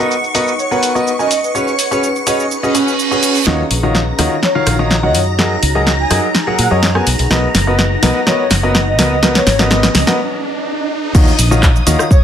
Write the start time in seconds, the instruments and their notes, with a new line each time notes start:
Already playing: ambient pad D#4 G#4 B4 F#5, string machine C#6
0.00 grand piano B3 F#4 A#4 B4 D#5
0.11 shaker
0.24 shaker
0.35 grand piano B3 F#4 A#4 B4 D#5, open hi-hat, shaker
0.48 shaker
0.59 soft synth lead C#5, shaker
0.71 grand piano B3 F#4 A#4 B4 F#5, soft synth lead C#5, shaker
0.83 open hi-hat, shaker
0.95 grand piano B3 F#4 A#4 B4 D#5, shaker
1.07 shaker
1.19 grand piano C#4 F#4 A#4 B4 G#5, soft synth lead D#5, shaker
1.31 ambient pad C#4, soft synth lead D#5, open hi-hat, shaker
1.43 ambient pad G#4, soft synth lead D#5, shaker
1.55 grand piano C#4 F#4 G#4 B4 C#5, shaker
1.67 soft synth lead C#5, shaker
1.79 open hi-hat, shaker
1.91 grand piano C#4 F#4 G#4 B4 C#5, shaker
2.03 shaker
2.16 shaker
2.27 grand piano C#4 F#4 G#4 B4 C#5, soft synth lead D#5, open hi-hat, shaker
2.39 soft synth lead D#5, shaker
2.51 reverse cymbal, shaker
2.63 grand piano C#4 F#4 G#4 B4 D#5, shaker
2.75 grand piano C#4 F#4 G#4 B4 C#5, open hi-hat, shaker
2.88 shaker
2.99 shaker
3.11 grand piano C#4 F#4 G#4 B4 C#5, shaker
3.23 open hi-hat, shaker
3.35 open hi-hat, shaker
3.47 fingered electric bass D#2, grand piano D#3 F4 F#4 C#5 D#5, ambient pad D#4, string machine A#5, snare, riser
3.66 ambient pad C#5
3.71 fingered electric bass A#1, open hi-hat
3.80 grand piano D#3 F4 F#4 C#5 D#5, ambient pad F#4
3.95 snare
4.07 ambient pad F5
4.19 fingered electric bass D#2, grand piano D#3 F4 F#4 C#5 D#5, cross-stick, open hi-hat
4.43 soft synth lead C#5, snare
4.55 grand piano D#3 F4 F#4 C#5 F5, soft synth lead C#5
4.67 fingered electric bass A#1, cross-stick, open hi-hat
4.79 grand piano D#3 F4 F#4 C#5 D#5
4.91 snare
5.03 grand piano D#3 F4 F#4 C#5 F#5, soft synth lead D#5
5.15 fingered electric bass F#2, soft synth lead D#5, open hi-hat
5.27 soft synth lead D#5
5.39 grand piano F#3 F#4 G#4 A#4 D#5, snare
5.60 fingered electric bass C#2, ambient pad G#4, open hi-hat
5.75 grand piano F#3 F#4 G#4 A#4 D#5
5.87 snare
5.99 soft synth lead G#5
6.08 fingered electric bass F#2, grand piano F#3 F#4 G#4 A#4 D#5, ambient pad F#5, cross-stick, open hi-hat
6.14 ambient pad A#4
6.35 snare
6.47 grand piano F#3 F#4 G#4 A#4 F#5
6.59 fingered electric bass A#2, soft synth lead F#5, open hi-hat
6.71 fingered electric bass F#2, grand piano F#3 F#4 G#4 A#4 D#5, soft synth lead C#5
6.83 soft synth lead C#5, snare
6.95 grand piano B3 F#4 G#4 A#4 G#5, cross-stick
7.07 fingered electric bass B1, open hi-hat
7.19 fingered electric bass B1, open hi-hat
7.31 fingered electric bass B1, grand piano B3 F#4 A#4 B4 D#5, snare
7.40 ambient pad B4
7.55 fingered electric bass F#1, snare, open hi-hat
7.67 grand piano B3 F#4 A#4 B4 D#5
7.79 snare
8.03 fingered electric bass B1, grand piano B3 F#4 A#4 B4 D#5, snare, open hi-hat
8.27 grand piano B3 F#4 A#4 B4 D#5, soft synth lead C#5, snare
8.39 soft synth lead C#5
8.51 fingered electric bass F#1, snare, open hi-hat
8.63 grand piano B3 F#4 A#4 B4 D#5
8.75 snare
8.87 soft synth lead D#5
8.99 fingered electric bass C#2, grand piano B3 F#4 A#4 B4 D#5, ambient pad C#4, soft synth lead D#5, snare, open hi-hat
9.11 ambient pad G#4, soft synth lead D#5
9.23 grand piano B3 F#4 A#4 B4 D#5, snare
9.35 soft synth lead C#5, snare
9.47 fingered electric bass G#1, snare, open hi-hat
9.59 grand piano B3 F#4 A#4 B4 D#5, snare
9.71 grand piano B3 F#4 A#4 B4 D#5, snare
9.83 snare
9.95 fingered electric bass C#2, soft synth lead D#5, snare, open hi-hat
10.07 grand piano B3 F#4 A#4 B4 D#5, soft synth lead D#5, snare
10.19 swell
11.15 fingered electric bass D#2, grand piano D#3 F4 F#4 C#5 D#5, ambient pad D#4, string machine D#6, kick, crash, shaker
11.28 shaker
11.39 fingered electric bass A#1, ambient pad F#4, open hi-hat, shaker
11.49 grand piano D#3 F4 F#4 C#5 D#5, ambient pad F5, shaker
11.63 kick, clap, shaker
11.76 shaker
11.87 fingered electric bass D#2, grand piano D#3 F4 F#4 C#5 D#5, open hi-hat, shaker
11.99 cross-stick, shaker
12.11 soft synth lead C#5, kick, shaker